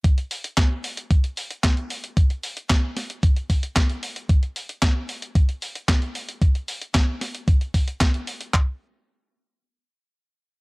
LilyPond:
\new DrumStaff \with { instrumentName = "Drums" } \drummode { \time 4/4 \tempo 4 = 113 <hh bd>16 hh16 hho16 hh16 <hc hh bd sn>8 hho16 hh16 <hh bd>16 hh16 hho16 hh16 <hc hh bd sn>16 hh16 hho16 hh16 | <hh bd>16 hh16 hho16 hh16 <hc hh bd sn>8 <hho sn>16 hh16 <hh bd>16 hh16 <hho bd>16 hh16 <hc hh bd sn>16 hh16 hho16 hh16 | <hh bd>16 hh16 hho16 hh16 <hc hh bd sn>8 hho16 hh16 <hh bd>16 hh16 hho16 hh16 <hc hh bd sn>16 hh16 hho16 hh16 | <hh bd>16 hh16 hho16 hh16 <hc hh bd sn>8 <hho sn>16 hh16 <hh bd>16 hh16 <hho bd>16 hh16 <hc hh bd sn>16 hh16 hho16 hh16 |
<hc bd>4 r4 r4 r4 | }